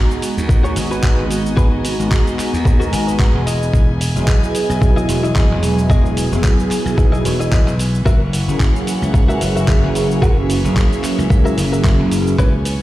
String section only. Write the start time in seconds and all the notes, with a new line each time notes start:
Already playing: B3 F#4 D#5 G#5
3.47 E3
8.06 A#3 C#5 F#5
10.22 E5
12.39 B3 C#5 G#5